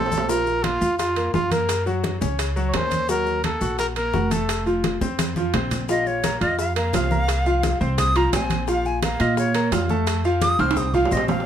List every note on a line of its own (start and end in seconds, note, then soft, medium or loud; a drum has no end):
0.00 0.76 A#1 medium
0.00 0.23 C4 medium
0.00 0.31 A4 loud
0.00 0.23 C5 medium
0.06 low timbale medium
0.12 high conga medium
0.12 maracas medium
0.18 low timbale medium
0.29 0.58 F3 medium
0.29 0.58 F4 medium
0.29 0.65 A#4 loud
0.29 high bongo medium
0.29 high conga soft
0.29 maracas medium
0.46 high bongo soft
0.46 high conga soft
0.46 maracas soft
0.64 0.78 A#3 medium
0.64 0.98 F4 medium
0.64 0.78 A#4 medium
0.64 high bongo medium
0.64 high conga medium
0.64 high timbale medium
0.64 maracas soft
0.81 1.30 F2 medium
0.81 1.10 F4 medium
0.81 1.10 F5 medium
0.81 high conga soft
0.81 maracas medium
0.98 1.31 F4 medium
0.98 high bongo medium
0.98 high conga soft
0.98 high timbale medium
0.98 maracas medium
1.16 1.31 A#3 medium
1.16 1.31 A#4 medium
1.16 high bongo soft
1.16 high conga soft
1.16 high timbale medium
1.16 maracas soft
1.34 2.16 F#2 medium
1.34 1.48 F4 medium
1.34 1.54 F4 medium
1.34 1.48 F5 medium
1.34 high bongo medium
1.34 low bongo medium
1.34 high conga medium
1.34 maracas soft
1.51 1.80 A#3 medium
1.51 1.80 A#4 medium
1.51 1.87 A#4 medium
1.51 high bongo soft
1.51 high conga medium
1.51 high timbale medium
1.51 maracas medium
1.69 high bongo medium
1.69 high conga soft
1.69 high timbale medium
1.69 maracas medium
1.86 2.15 F#3 medium
1.86 2.15 F#4 medium
1.86 high bongo soft
1.86 high conga soft
1.86 maracas soft
2.04 high bongo medium
2.04 high conga medium
2.04 high timbale medium
2.04 maracas soft
2.21 2.70 C#2 loud
2.21 2.50 C#4 medium
2.21 2.50 C#5 medium
2.21 high bongo soft
2.21 high conga medium
2.21 maracas medium
2.39 high bongo medium
2.39 high conga soft
2.39 high timbale medium
2.39 maracas medium
2.56 2.71 F#3 medium
2.56 2.71 F#4 medium
2.56 high bongo soft
2.56 high conga soft
2.56 maracas soft
2.68 2.78 C#5 medium
2.74 3.56 D#2 medium
2.74 3.03 C#4 medium
2.74 3.03 A#4 medium
2.74 3.10 C5 loud
2.74 high bongo medium
2.74 low bongo medium
2.74 high conga medium
2.74 high timbale loud
2.74 low timbale medium
2.74 maracas soft
2.91 high conga medium
2.91 high timbale medium
2.91 maracas medium
3.09 3.38 F#3 medium
3.09 3.38 F#4 medium
3.09 3.42 A#4 loud
3.09 high bongo medium
3.09 high conga soft
3.09 maracas medium
3.26 high bongo soft
3.26 high conga soft
3.26 maracas soft
3.44 3.58 A#3 medium
3.44 3.77 A4 medium
3.44 3.58 A#4 medium
3.44 high bongo soft
3.44 high conga medium
3.44 high timbale medium
3.44 maracas soft
3.61 4.10 A#1 medium
3.61 3.90 F#4 medium
3.61 3.90 F#5 medium
3.61 high conga soft
3.61 maracas medium
3.79 3.87 A#4 medium
3.79 high bongo medium
3.79 high conga soft
3.79 high timbale medium
3.79 maracas medium
3.96 4.11 A#3 medium
3.96 4.11 A#4 medium
3.96 4.33 A#4 medium
3.96 high bongo soft
3.96 high conga soft
3.96 high timbale medium
3.96 maracas soft
4.14 4.96 F1 medium
4.14 4.28 F#4 medium
4.14 4.28 F#5 medium
4.14 high bongo medium
4.14 low bongo medium
4.14 high conga medium
4.14 maracas soft
4.31 4.60 A3 medium
4.31 4.60 A4 medium
4.31 4.67 A4 medium
4.31 high bongo soft
4.31 high conga medium
4.31 high timbale medium
4.31 maracas medium
4.49 high bongo medium
4.49 high conga soft
4.49 high timbale medium
4.49 maracas medium
4.66 4.95 F3 medium
4.66 4.95 F4 medium
4.66 high bongo soft
4.66 high conga soft
4.66 maracas soft
4.84 high bongo medium
4.84 high conga medium
4.84 high timbale medium
4.84 maracas soft
5.01 5.50 F2 medium
5.01 5.30 C4 medium
5.01 5.30 C5 medium
5.01 high bongo soft
5.01 high conga medium
5.01 maracas medium
5.19 high bongo medium
5.19 high conga medium
5.19 high timbale medium
5.19 maracas medium
5.36 5.51 F3 medium
5.36 5.51 F4 medium
5.36 high bongo soft
5.36 high conga medium
5.36 maracas soft
5.54 6.35 A#1 medium
5.54 5.83 C4 medium
5.54 5.83 C5 medium
5.54 high bongo medium
5.54 low bongo medium
5.54 low conga medium
5.54 high timbale medium
5.54 maracas soft
5.71 low conga medium
5.71 high timbale medium
5.71 maracas medium
5.89 6.18 F3 medium
5.89 6.18 F4 medium
5.89 6.08 D#5 medium
5.89 6.18 F5 medium
5.89 high bongo medium
5.89 high conga soft
5.89 maracas medium
6.06 6.40 C#5 medium
6.06 high bongo soft
6.06 high conga soft
6.06 maracas soft
6.24 6.38 A#3 medium
6.24 6.38 A#4 medium
6.24 6.38 A#5 medium
6.24 high bongo medium
6.24 high conga medium
6.24 high timbale medium
6.24 low timbale medium
6.24 maracas medium
6.41 6.90 F2 medium
6.41 6.70 F4 medium
6.41 6.58 D#5 medium
6.41 6.70 F5 medium
6.41 6.70 F6 medium
6.41 high bongo soft
6.41 high conga soft
6.41 high timbale medium
6.41 maracas soft
6.59 6.76 F5 medium
6.59 high bongo medium
6.59 high conga soft
6.59 maracas medium
6.76 6.90 A#3 medium
6.76 6.90 A#4 medium
6.76 7.78 F5 medium
6.76 6.91 A#5 medium
6.76 high bongo soft
6.76 high conga soft
6.76 high timbale medium
6.76 maracas soft
6.93 7.75 C2 medium
6.93 7.08 F4 medium
6.93 7.08 F5 medium
6.93 7.08 F6 medium
6.93 high bongo soft
6.93 low bongo medium
6.93 high conga medium
6.93 high timbale medium
6.93 low timbale medium
6.93 maracas medium
7.11 7.40 A#3 medium
7.11 7.40 A#4 medium
7.11 7.40 A#5 medium
7.11 high conga medium
7.11 maracas soft
7.28 high bongo medium
7.28 high conga soft
7.28 high timbale medium
7.28 maracas medium
7.46 7.74 F3 medium
7.46 7.75 F4 medium
7.46 7.75 F5 medium
7.46 high bongo soft
7.46 high conga soft
7.46 maracas soft
7.63 high bongo medium
7.63 high conga medium
7.63 high timbale medium
7.63 low timbale medium
7.63 maracas medium
7.81 8.29 C2 loud
7.81 8.09 C4 medium
7.81 8.09 C5 medium
7.81 8.10 C6 medium
7.81 high bongo soft
7.81 high conga soft
7.81 maracas soft
7.98 8.18 D#6 medium
7.98 high bongo medium
7.98 high conga soft
7.98 low conga medium
7.98 high timbale medium
7.98 maracas medium
8.15 8.30 F3 medium
8.15 8.30 F4 medium
8.15 8.30 F5 medium
8.15 8.33 A#5 medium
8.15 high bongo soft
8.15 high conga soft
8.15 high timbale medium
8.15 maracas soft
8.33 9.14 A#1 medium
8.33 8.62 C4 medium
8.33 8.62 C5 medium
8.33 8.70 G#5 medium
8.33 8.62 C6 medium
8.33 high bongo soft
8.33 low bongo medium
8.33 high conga soft
8.33 high timbale medium
8.33 low timbale medium
8.33 maracas medium
8.50 high conga medium
8.50 high timbale medium
8.50 maracas soft
8.68 8.97 F3 medium
8.68 8.97 F4 medium
8.68 8.97 F5 medium
8.68 8.88 F5 loud
8.68 high bongo medium
8.68 high conga soft
8.68 maracas medium
8.85 9.03 G#5 medium
8.85 high bongo soft
8.85 high conga soft
8.85 maracas soft
9.02 9.17 A#3 medium
9.02 9.17 A#4 medium
9.02 9.22 F5 medium
9.02 9.17 A#5 medium
9.02 high bongo medium
9.02 high conga medium
9.02 high timbale medium
9.02 low timbale medium
9.02 maracas medium
9.20 9.69 A#2 loud
9.20 9.49 F4 medium
9.20 9.37 D#5 medium
9.20 9.49 F5 medium
9.20 9.49 F6 medium
9.20 high bongo soft
9.20 high conga soft
9.20 high timbale medium
9.20 maracas soft
9.37 9.72 C#5 medium
9.37 high bongo medium
9.37 high conga soft
9.37 maracas medium
9.55 9.69 A#3 medium
9.55 9.69 A#4 medium
9.55 9.69 A#5 medium
9.55 high bongo soft
9.55 high conga soft
9.55 high timbale medium
9.55 maracas soft
9.72 10.53 F2 medium
9.72 9.87 F4 medium
9.72 9.87 F5 medium
9.72 9.87 F6 medium
9.72 high bongo soft
9.72 low bongo medium
9.72 high conga medium
9.72 high timbale medium
9.72 low timbale medium
9.72 maracas medium
9.89 10.18 A3 medium
9.89 10.19 A4 medium
9.89 10.19 A5 medium
9.89 high conga medium
9.89 maracas soft
10.07 high bongo medium
10.07 high conga soft
10.07 high timbale medium
10.07 maracas medium
10.24 10.53 F3 medium
10.24 10.53 F4 medium
10.24 10.53 F5 medium
10.24 high bongo soft
10.24 high conga soft
10.24 maracas soft
10.41 10.62 D#6 loud
10.41 high bongo medium
10.41 high conga medium
10.41 high timbale medium
10.41 low timbale medium
10.41 maracas medium
10.59 11.08 C2 medium
10.59 10.88 C4 medium
10.59 10.88 C5 medium
10.59 10.88 C6 medium
10.59 10.79 F6 loud
10.59 high conga soft
10.59 high timbale medium
10.59 maracas soft
10.71 high timbale medium
10.76 10.96 D#6 medium
10.76 high bongo medium
10.76 high conga soft
10.76 low conga medium
10.76 maracas medium
10.82 high timbale medium
10.94 11.08 F3 medium
10.94 11.08 F4 medium
10.94 11.09 F5 medium
10.94 11.14 F5 medium
10.94 high bongo soft
10.94 high conga soft
10.94 low conga medium
10.94 maracas soft
11.05 low timbale medium
11.11 11.46 A#1 medium
11.11 11.40 C4 medium
11.11 11.40 C5 medium
11.11 11.29 D#5 medium
11.11 11.40 C6 medium
11.11 high bongo soft
11.11 low bongo medium
11.11 high conga soft
11.11 maracas medium
11.17 low timbale medium
11.28 11.46 F5 medium
11.28 high conga medium
11.28 low timbale medium
11.28 maracas soft
11.40 low timbale medium